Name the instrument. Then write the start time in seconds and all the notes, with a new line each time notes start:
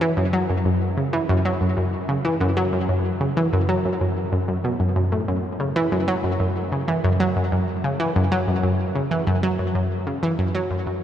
synth arpeggio sound
0.01 E3
0.17 F#2
0.33 F#3
0.50 F#2
0.65 F#2
0.97 C#3
1.13 E3
1.29 F#2
1.45 F#3
1.61 F#2
1.77 F#2
2.09 C#3
2.25 E3
2.41 F#2
2.57 F#3
2.73 F#2
2.89 F#2
3.21 C#3
3.37 E3
3.53 F#2
3.69 F#3
3.85 F#2
4.01 F#2
4.32 F#2
4.48 F#2
4.64 B2
4.80 F#2
4.96 F#2
5.12 A2
5.28 F#2
5.60 C#3
5.76 E3
5.92 F#2
6.08 F#3
6.24 F#2
6.40 F#2
6.72 C#3
6.88 E3
7.04 F#2
7.20 F#3
7.36 F#2
7.52 F#2
7.84 C#3
8.00 E3
8.16 F#2
8.32 F#3
8.47 F#2
8.63 F#2
8.95 C#3
9.11 E3
9.27 F#2
9.43 F#3
9.59 F#2
9.75 F#2
10.07 C#3
10.23 E3
10.39 F#2
10.55 F#3
10.71 F#2
10.86 F#2